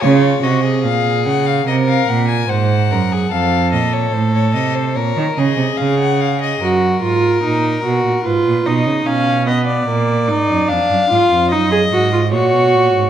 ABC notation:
X:1
M:4/4
L:1/16
Q:1/4=73
K:Bbm
V:1 name="Violin"
d2 e2 f2 g f e f g a g4 | f2 e d c d e c d2 e2 f g f e | [K:Ebm] z16 | z16 |]
V:2 name="Violin"
F2 G A4- A B4 c2 B A | =A8 B2 _A6 | [K:Ebm] B8 c2 e2 f2 e =d- | =d4 f4 e4 _d4 |]
V:3 name="Viola"
z16 | z16 | [K:Ebm] G2 F2 E2 G2 F2 E2 D2 C2 | B,2 E2 =D2 F2 E A G F G4 |]
V:4 name="Cello" clef=bass
D,2 C,2 B,,2 D,2 C,2 B,,2 A,,2 G,,2 | F,,2 B,,2 =A,,2 C,2 B,, E, D, C, D,4 | [K:Ebm] G,,2 A,,2 B,,2 C, B,, A,, B,, C, D, C,4 | B,,2 A,, G,, F,, G,, A,, F,, G,,2 A,,2 B,, C, B,, A,, |]